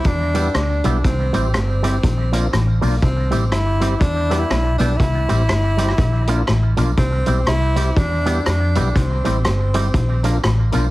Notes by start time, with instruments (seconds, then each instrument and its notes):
0.04 fingered electric bass E2, clean electric guitar E3, tenor saxophone D4, kick, closed hi-hat
0.34 clean electric guitar G3 B3 E4 G4, tonewheel organ B3 E4 G4, closed hi-hat, tambourine
0.54 fingered electric bass D2, clean electric guitar D3, tenor saxophone D4, cross-stick, closed hi-hat
0.84 fingered electric bass B1, clean electric guitar B2 G3 B3 E4 G4, tonewheel organ B3 E4 G4, closed hi-hat, tambourine
1.04 fingered electric bass C2, clean electric guitar C3, tenor saxophone C4, kick, closed hi-hat
1.33 fingered electric bass A1, clean electric guitar A2 G3 C4 E4 G4, tonewheel organ C4 E4 G4, closed hi-hat, tambourine
1.54 fingered electric bass G1, clean electric guitar G2, tenor saxophone C4, cross-stick, closed hi-hat
1.83 clean electric guitar G3 C4 E4 G4, tonewheel organ C4 E4 G4, closed hi-hat, tambourine
2.03 fingered electric bass A#1, clean electric guitar A#2, kick, closed hi-hat
2.32 clean electric guitar F3 A#3 D4 F4, tonewheel organ A#3 D4 F4, closed hi-hat, tambourine
2.53 fingered electric bass A1, clean electric guitar A2, cross-stick, closed hi-hat
2.81 fingered electric bass B1, clean electric guitar B2 F3 A#3 D4 F4, tonewheel organ A#3 D4 F4, open hi-hat, tambourine
3.02 fingered electric bass C2, clean electric guitar C3, tenor saxophone C4, kick, closed hi-hat
3.31 fingered electric bass A1, clean electric guitar A2 G3 C4 E4 G4, tonewheel organ C4 E4 G4, closed hi-hat, tambourine
3.51 fingered electric bass G1, clean electric guitar G2, tenor saxophone E4, cross-stick, closed hi-hat
3.80 clean electric guitar G3 C4 E4 G4, tonewheel organ C4 E4 G4, closed hi-hat, tambourine
4.00 fingered electric bass E2, clean electric guitar E3, tenor saxophone D4, kick, closed hi-hat
4.29 clean electric guitar G3 B3 E4 G4, tonewheel organ B3 E4 G4, cross-stick, closed hi-hat, tambourine
4.39 tenor saxophone E4
4.50 fingered electric bass B1, clean electric guitar B2, cross-stick, closed hi-hat
4.78 fingered electric bass B1, clean electric guitar B2 G3 B3 E4 G4, tonewheel organ B3 E4 G4, tenor saxophone D4, closed hi-hat, tambourine
4.97 fingered electric bass C2, clean electric guitar C3, tenor saxophone E4, kick, closed hi-hat
5.28 fingered electric bass A1, clean electric guitar A2 G3 C4 E4 G4, tonewheel organ C4 E4 G4, closed hi-hat, tambourine
5.49 fingered electric bass G1, clean electric guitar G2, cross-stick, closed hi-hat
5.77 clean electric guitar G3 C4 E4 G4, tonewheel organ C4 E4 G4, closed hi-hat, tambourine
5.88 cross-stick
5.98 fingered electric bass A#1, clean electric guitar A#2, kick, closed hi-hat
6.27 clean electric guitar F3 A#3 D4 F4, tonewheel organ A#3 D4 F4, closed hi-hat, tambourine
6.47 fingered electric bass A1, clean electric guitar A2, cross-stick, closed hi-hat
6.77 fingered electric bass B1, clean electric guitar B2 F3 A#3 D4 F4, tonewheel organ A#3 D4 F4, closed hi-hat, tambourine
6.97 fingered electric bass C2, clean electric guitar C3, tenor saxophone C4, kick, closed hi-hat
7.26 fingered electric bass B1, clean electric guitar B2 G3 C4 E4 G4, tonewheel organ C4 E4 G4, closed hi-hat, tambourine
7.47 fingered electric bass C2, clean electric guitar C3, tenor saxophone E4, cross-stick, closed hi-hat
7.76 clean electric guitar G3 C4 E4 G4, tonewheel organ C4 E4 G4, closed hi-hat, tambourine
7.96 fingered electric bass E2, clean electric guitar E3, tenor saxophone D4, kick, closed hi-hat
8.25 clean electric guitar G3 B3 E4 G4, tonewheel organ B3 E4 G4, closed hi-hat, tambourine
8.46 fingered electric bass F2, clean electric guitar F3, tenor saxophone D4, cross-stick, closed hi-hat
8.75 fingered electric bass B1, clean electric guitar B2 G3 B3 E4 G4, tonewheel organ B3 E4 G4, closed hi-hat, tambourine
8.95 fingered electric bass C2, clean electric guitar C3, tenor saxophone C4, kick, closed hi-hat
9.24 fingered electric bass A1, clean electric guitar A2 G3 C4 E4 G4, tonewheel organ C4 E4 G4, closed hi-hat, tambourine
9.45 fingered electric bass G1, clean electric guitar G2, tenor saxophone C4, cross-stick, closed hi-hat
9.74 clean electric guitar G3 C4 E4 G4, tonewheel organ C4 E4 G4, closed hi-hat, tambourine
9.94 fingered electric bass A#1, clean electric guitar A#2, kick, closed hi-hat
10.23 clean electric guitar F3 A#3 D4 F4, tonewheel organ A#3 D4 F4, closed hi-hat, tambourine
10.44 fingered electric bass A1, clean electric guitar A2, cross-stick, closed hi-hat
10.72 fingered electric bass B1, clean electric guitar B2 F3 A#3 D4 F4, tonewheel organ A#3 D4 F4, closed hi-hat, tambourine